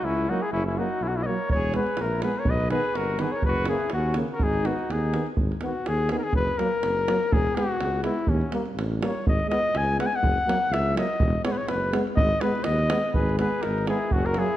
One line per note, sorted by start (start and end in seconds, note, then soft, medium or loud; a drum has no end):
0.02 0.29 C#2 medium
0.02 0.32 C#4 medium
0.02 0.31 E4 medium
0.29 0.39 F#3 medium
0.29 0.39 A#3 medium
0.29 0.42 D#4 medium
0.29 0.40 F#4 medium
0.39 0.51 E4 medium
0.39 0.44 F#4 soft
0.39 0.52 G#4 medium
0.39 0.43 A#4 medium
0.52 0.79 F#1 loud
0.52 0.65 C#4 medium
0.52 0.65 E4 loud
0.66 0.80 C#4 medium
0.66 0.79 E4 medium
0.76 0.86 F#3 medium
0.76 0.87 A#3 medium
0.76 1.06 D#4 medium
0.76 1.04 F#4 medium
1.00 1.27 B1 medium
1.00 1.12 C#4 medium
1.00 1.09 E4 medium
1.08 1.19 D#4 soft
1.08 1.18 F#4 medium
1.16 1.25 C#4 medium
1.16 1.24 E4 medium
1.23 1.36 A#3 medium
1.23 1.30 B4 medium
1.23 1.50 C#5 medium
1.23 1.28 D#5 medium
1.27 1.37 F#3 medium
1.27 1.51 A#4 medium
1.50 1.76 E1 medium
1.50 1.73 C#5 loud
1.50 davul low medium
1.55 1.75 G#4 medium
1.63 davul high soft
1.74 1.84 G#3 medium
1.74 1.84 B3 medium
1.74 2.03 B4 medium
1.74 davul high medium
1.78 2.04 G#4 medium
1.87 davul high soft
1.97 2.24 A#1 medium
1.97 davul high medium
2.01 2.24 E4 medium
2.01 2.22 A#4 medium
2.22 2.32 G#3 medium
2.22 2.32 B3 medium
2.22 2.39 G#4 medium
2.22 2.41 B4 medium
2.22 davul high medium
2.36 2.49 A#4 medium
2.36 2.52 C#5 medium
2.36 davul high soft
2.45 2.72 B1 loud
2.45 2.70 B4 medium
2.45 davul low medium
2.50 2.70 D#5 loud
2.60 davul high soft
2.70 2.80 D#3 medium
2.70 2.81 B3 medium
2.70 2.96 G#4 medium
2.70 2.98 B4 medium
2.70 davul high medium
2.85 davul high soft
2.95 3.22 G1 medium
2.95 3.24 F#4 medium
2.95 3.22 A#4 medium
2.95 davul high medium
3.18 3.28 D#3 medium
3.18 3.29 B3 medium
3.18 3.33 B4 medium
3.18 davul high medium
3.22 3.38 G#4 medium
3.32 3.43 C#5 medium
3.32 davul high soft
3.36 3.45 A#4 medium
3.42 3.70 F#1 loud
3.42 3.67 B4 loud
3.42 davul low medium
3.48 3.68 F#4 loud
3.56 davul high soft
3.65 3.77 C#3 medium
3.65 3.77 A#3 medium
3.65 3.91 G#4 medium
3.65 davul high medium
3.71 3.92 E4 medium
3.80 davul high soft
3.90 4.19 D#2 medium
3.90 4.15 F#4 medium
3.90 davul high medium
3.96 4.17 C#4 medium
4.14 4.25 C#3 medium
4.14 4.25 A#3 medium
4.14 davul high medium
4.28 davul high soft
4.33 4.46 F#4 medium
4.33 4.45 A#4 medium
4.40 4.68 G#1 loud
4.40 4.67 G#4 medium
4.40 davul low medium
4.44 4.69 D#4 medium
4.53 davul high soft
4.62 4.72 D#3 medium
4.62 4.75 B3 medium
4.62 davul high medium
4.66 4.92 D#4 medium
4.66 4.94 F#4 medium
4.79 davul high soft
4.89 5.16 D#2 medium
4.89 5.28 D#4 medium
4.89 5.28 G#4 medium
4.89 davul high medium
5.13 5.24 D#3 medium
5.13 5.23 B3 soft
5.13 davul high medium
5.26 davul high soft
5.37 5.51 G#1 loud
5.37 davul low medium
5.52 davul high soft
5.61 5.72 D#3 soft
5.61 5.72 B3 medium
5.61 davul high medium
5.66 5.89 F#4 medium
5.86 6.14 D#2 medium
5.86 6.11 G#4 loud
5.86 davul high medium
6.09 6.21 D#3 medium
6.09 6.20 B3 medium
6.09 6.19 G#4 medium
6.09 davul high medium
6.18 6.25 A#4 medium
6.23 6.35 G#4 loud
6.23 davul high soft
6.33 6.48 F#1 loud
6.33 6.59 B4 loud
6.33 davul low medium
6.47 davul high soft
6.58 6.68 F#3 medium
6.58 6.69 A#3 medium
6.58 7.34 A#4 loud
6.58 davul high medium
6.83 7.10 F#1 medium
6.83 davul high medium
7.08 7.18 F#3 medium
7.08 7.17 A#3 medium
7.08 davul high medium
7.23 davul high soft
7.32 7.46 E1 loud
7.32 7.57 G#4 loud
7.32 davul low loud
7.47 davul high soft
7.55 7.65 G#3 medium
7.55 7.65 B3 medium
7.55 8.03 F#4 loud
7.55 davul high medium
7.80 8.07 C#2 medium
7.80 davul high medium
8.03 8.13 G#3 medium
8.03 8.14 B3 soft
8.03 8.30 E4 medium
8.03 davul high medium
8.19 davul high soft
8.27 8.41 D#2 loud
8.27 8.53 C#4 medium
8.27 davul low medium
8.41 davul high soft
8.51 8.61 G3 medium
8.51 8.62 A#3 medium
8.51 davul high medium
8.66 davul high soft
8.76 9.03 A1 medium
8.76 davul high medium
8.92 davul high soft
9.01 9.11 G3 medium
9.01 9.12 A#3 medium
9.01 davul high medium
9.06 9.27 C#5 medium
9.15 davul high soft
9.26 9.39 G#1 loud
9.26 9.49 D#5 medium
9.26 davul low loud
9.39 davul high soft
9.46 9.57 G#3 medium
9.46 9.60 B3 medium
9.46 9.79 D#5 loud
9.52 davul high medium
9.74 10.01 C#2 medium
9.74 9.99 G#5 loud
9.74 davul high medium
9.98 10.08 G#3 medium
9.98 10.08 B3 medium
9.98 10.08 F#5 medium
9.98 davul high medium
10.06 10.17 G#5 medium
10.13 10.74 F#5 loud
10.13 davul high soft
10.21 10.35 F#1 medium
10.21 davul low medium
10.38 davul high soft
10.47 10.56 F#3 medium
10.47 10.56 A#3 medium
10.47 davul high medium
10.71 10.98 C#2 medium
10.71 10.96 E5 loud
10.71 davul high medium
10.94 11.04 F#3 medium
10.94 11.06 A#3 medium
10.94 11.42 D#5 medium
10.94 davul high medium
11.10 davul high soft
11.20 11.34 E1 loud
11.20 davul low medium
11.44 11.54 G#3 medium
11.44 11.54 B3 medium
11.44 11.54 C#5 medium
11.44 davul high medium
11.52 11.59 B4 medium
11.57 11.70 C#5 medium
11.68 11.96 F#1 medium
11.68 11.93 B4 medium
11.68 davul high medium
11.92 12.02 G#3 medium
11.92 12.02 B3 medium
11.92 davul high medium
12.07 davul high soft
12.16 12.31 G#1 loud
12.16 12.42 D#5 loud
12.16 davul low loud
12.31 davul high soft
12.41 12.51 G#3 medium
12.41 12.52 B3 medium
12.41 12.65 B4 medium
12.41 davul high medium
12.55 davul high soft
12.64 12.93 D#2 medium
12.64 13.13 D#5 loud
12.64 davul high medium
12.79 davul high soft
12.89 12.99 G#3 medium
12.89 12.99 B3 medium
12.89 davul high medium
13.04 davul high soft
13.14 13.41 G#1 loud
13.14 13.37 G#4 medium
13.14 13.37 B4 medium
13.14 davul low medium
13.29 davul high soft
13.38 13.49 G#3 medium
13.38 13.48 B3 medium
13.38 13.64 G#4 medium
13.38 13.64 B4 medium
13.38 davul high medium
13.62 13.91 G#1 medium
13.62 13.87 D#4 medium
13.62 13.87 A#4 medium
13.62 davul high medium
13.78 davul high soft
13.87 13.96 G#3 medium
13.87 13.97 B3 medium
13.87 14.15 E4 medium
13.87 14.14 G#4 medium
13.87 davul high medium
14.11 14.39 F#1 loud
14.11 14.29 C#4 medium
14.11 14.27 F#4 medium
14.11 davul low medium
14.26 14.43 F#4 medium
14.26 14.40 A#4 loud
14.26 davul high soft
14.34 14.47 F#3 medium
14.34 14.45 A#3 medium
14.34 davul high medium
14.39 14.57 E4 medium
14.39 14.57 G#4 medium